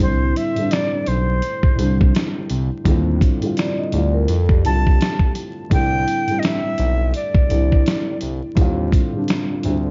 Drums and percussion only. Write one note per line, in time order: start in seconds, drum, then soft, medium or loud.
0.00 kick medium
0.00 closed hi-hat medium
0.36 closed hi-hat medium
0.56 closed hi-hat soft
0.71 finger snap medium
0.71 snare loud
0.71 closed hi-hat medium
1.06 closed hi-hat medium
1.42 closed hi-hat medium
1.63 kick medium
1.79 closed hi-hat medium
2.01 kick medium
2.15 finger snap medium
2.15 snare loud
2.15 closed hi-hat medium
2.50 closed hi-hat medium
2.85 kick medium
2.85 closed hi-hat medium
3.21 kick medium
3.21 closed hi-hat medium
3.42 closed hi-hat soft
3.57 finger snap medium
3.57 snare loud
3.57 closed hi-hat medium
3.92 closed hi-hat medium
4.28 closed hi-hat medium
4.49 kick medium
4.65 closed hi-hat medium
4.87 kick medium
5.01 finger snap medium
5.01 snare loud
5.01 closed hi-hat medium
5.19 kick medium
5.35 closed hi-hat medium
5.71 kick medium
5.71 closed hi-hat medium
6.08 closed hi-hat medium
6.28 closed hi-hat soft
6.43 finger snap medium
6.43 snare loud
6.43 closed hi-hat medium
6.78 closed hi-hat medium
7.14 closed hi-hat medium
7.35 kick medium
7.50 closed hi-hat medium
7.72 kick medium
7.86 finger snap medium
7.86 snare loud
7.86 closed hi-hat medium
8.21 closed hi-hat medium
8.57 kick loud
8.57 closed hi-hat medium
8.92 kick medium
8.92 closed hi-hat medium
9.28 finger snap medium
9.28 snare loud
9.28 closed hi-hat medium
9.63 closed hi-hat medium